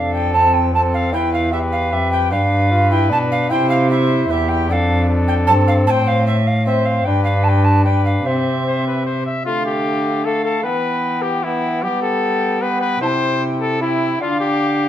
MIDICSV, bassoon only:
0, 0, Header, 1, 2, 480
1, 0, Start_track
1, 0, Tempo, 396563
1, 1360, Time_signature, 3, 2, 24, 8
1, 18017, End_track
2, 0, Start_track
2, 0, Title_t, "Bassoon"
2, 0, Program_c, 0, 70
2, 0, Note_on_c, 0, 62, 55
2, 412, Note_on_c, 0, 60, 63
2, 430, Note_off_c, 0, 62, 0
2, 873, Note_off_c, 0, 60, 0
2, 880, Note_on_c, 0, 60, 59
2, 1371, Note_on_c, 0, 64, 59
2, 1389, Note_off_c, 0, 60, 0
2, 1842, Note_on_c, 0, 67, 62
2, 1860, Note_off_c, 0, 64, 0
2, 2319, Note_off_c, 0, 67, 0
2, 2326, Note_on_c, 0, 67, 64
2, 2810, Note_on_c, 0, 62, 61
2, 2828, Note_off_c, 0, 67, 0
2, 3276, Note_off_c, 0, 62, 0
2, 3283, Note_on_c, 0, 65, 79
2, 3528, Note_on_c, 0, 64, 78
2, 3546, Note_off_c, 0, 65, 0
2, 3756, Note_on_c, 0, 62, 76
2, 3774, Note_off_c, 0, 64, 0
2, 4241, Note_on_c, 0, 64, 67
2, 4260, Note_off_c, 0, 62, 0
2, 4720, Note_off_c, 0, 64, 0
2, 4729, Note_on_c, 0, 64, 72
2, 5686, Note_on_c, 0, 62, 67
2, 5704, Note_off_c, 0, 64, 0
2, 6640, Note_on_c, 0, 60, 79
2, 6658, Note_off_c, 0, 62, 0
2, 7734, Note_off_c, 0, 60, 0
2, 8072, Note_on_c, 0, 60, 66
2, 8515, Note_off_c, 0, 60, 0
2, 8555, Note_on_c, 0, 62, 68
2, 9462, Note_off_c, 0, 62, 0
2, 9514, Note_on_c, 0, 62, 63
2, 9997, Note_on_c, 0, 60, 60
2, 10015, Note_off_c, 0, 62, 0
2, 11210, Note_off_c, 0, 60, 0
2, 11454, Note_on_c, 0, 57, 55
2, 12364, Note_off_c, 0, 57, 0
2, 12420, Note_on_c, 0, 57, 55
2, 12889, Note_on_c, 0, 59, 55
2, 12907, Note_off_c, 0, 57, 0
2, 13845, Note_off_c, 0, 59, 0
2, 13850, Note_on_c, 0, 59, 59
2, 14318, Note_off_c, 0, 59, 0
2, 14328, Note_on_c, 0, 59, 55
2, 15261, Note_off_c, 0, 59, 0
2, 15270, Note_on_c, 0, 59, 63
2, 15744, Note_off_c, 0, 59, 0
2, 15749, Note_on_c, 0, 64, 55
2, 16692, Note_off_c, 0, 64, 0
2, 16715, Note_on_c, 0, 64, 66
2, 17185, Note_off_c, 0, 64, 0
2, 17199, Note_on_c, 0, 62, 63
2, 18017, Note_off_c, 0, 62, 0
2, 18017, End_track
0, 0, End_of_file